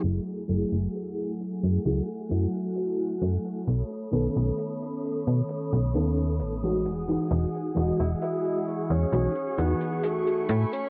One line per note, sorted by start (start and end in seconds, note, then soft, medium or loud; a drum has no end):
0.00 0.20 F#1 medium
0.00 0.43 F#3 medium
0.00 0.44 A3 medium
0.00 6.82 A3 medium
0.00 0.44 E4 medium
0.00 0.44 G#4 loud
0.00 closed hi-hat medium
0.00 crash medium
0.04 3.64 F#5 medium
0.04 3.64 G#5 medium
0.04 1.84 E6 medium
0.27 closed hi-hat medium
0.47 0.65 F#1 medium
0.47 1.79 F#3 medium
0.47 1.80 A3 medium
0.47 1.80 E4 medium
0.47 1.81 G#4 loud
0.47 closed hi-hat medium
0.72 0.87 F#1 medium
0.72 closed hi-hat medium
0.95 closed hi-hat medium
1.18 closed hi-hat medium
1.41 closed hi-hat medium
1.63 1.78 F#2 medium
1.63 closed hi-hat medium
1.85 2.01 C#2 medium
1.85 2.03 F#3 medium
1.85 2.03 A3 medium
1.85 2.04 E4 medium
1.85 2.04 G#4 medium
1.85 3.66 F#6 medium
1.85 closed hi-hat medium
2.08 closed hi-hat soft
2.29 2.47 F#2 medium
2.29 3.64 F#3 medium
2.29 3.64 A3 medium
2.29 3.65 E4 medium
2.29 3.65 F#4 medium
2.29 closed hi-hat medium
2.55 closed hi-hat soft
2.76 closed hi-hat medium
2.99 closed hi-hat medium
3.22 3.38 F#2 medium
3.22 closed hi-hat medium
3.45 closed hi-hat soft
3.67 3.83 B1 medium
3.67 6.82 C#5 medium
3.67 6.82 B5 medium
3.67 8.63 D#6 medium
3.67 closed hi-hat medium
3.90 closed hi-hat medium
4.11 4.29 B1 medium
4.11 5.88 D#3 medium
4.11 5.89 B3 medium
4.11 5.89 C#4 medium
4.11 5.90 A4 medium
4.11 closed hi-hat medium
4.35 4.51 B1 medium
4.35 closed hi-hat soft
4.58 closed hi-hat medium
4.82 closed hi-hat medium
5.04 closed hi-hat medium
5.27 5.42 B2 medium
5.27 closed hi-hat medium
5.49 closed hi-hat medium
5.72 5.96 B1 loud
5.72 closed hi-hat medium
5.94 6.42 D#2 loud
5.94 6.57 D#3 medium
5.94 6.57 B3 medium
5.94 6.58 C#4 medium
5.94 6.58 A4 medium
5.94 closed hi-hat medium
6.17 closed hi-hat medium
6.40 6.87 A1 medium
6.40 closed hi-hat loud
6.63 7.03 E3 medium
6.63 7.03 G#3 medium
6.63 7.03 D#4 medium
6.63 7.04 F#4 medium
6.63 closed hi-hat medium
6.85 7.17 E1 medium
6.85 10.46 G#4 medium
6.85 10.45 F#5 medium
6.85 closed hi-hat medium
7.08 7.71 E3 medium
7.08 7.71 G#3 medium
7.08 7.71 D#4 medium
7.08 7.71 F#4 medium
7.08 closed hi-hat soft
7.31 7.47 E1 medium
7.31 closed hi-hat loud
7.55 closed hi-hat medium
7.74 7.92 E1 medium
7.74 9.06 E3 medium
7.74 9.07 G#3 medium
7.74 9.08 F#4 loud
7.74 9.08 D#5 medium
7.74 closed hi-hat medium
8.00 8.15 E1 medium
8.00 8.10 E4 medium
8.00 closed hi-hat soft
8.22 8.87 E4 loud
8.22 closed hi-hat loud
8.45 closed hi-hat soft
8.68 10.89 C#6 medium
8.68 closed hi-hat soft
8.90 9.06 E2 medium
8.90 9.60 C#4 loud
8.90 closed hi-hat medium
9.12 9.28 B1 medium
9.12 9.31 E3 medium
9.12 9.31 G#3 medium
9.12 9.31 D#4 medium
9.12 9.31 F#4 medium
9.12 closed hi-hat loud
9.36 closed hi-hat soft
9.57 9.74 E2 medium
9.57 10.46 E3 medium
9.57 10.05 B3 medium
9.57 10.47 D#4 medium
9.57 10.47 F#4 medium
9.57 10.46 G#4 medium
9.57 closed hi-hat medium
9.81 closed hi-hat medium
10.03 10.74 A3 medium
10.03 closed hi-hat loud
10.27 closed hi-hat soft
10.49 10.65 A2 loud
10.49 10.89 A3 medium
10.49 10.89 G#5 medium
10.49 10.89 B5 medium
10.49 closed hi-hat medium
10.72 10.89 C#4 loud
10.72 closed hi-hat medium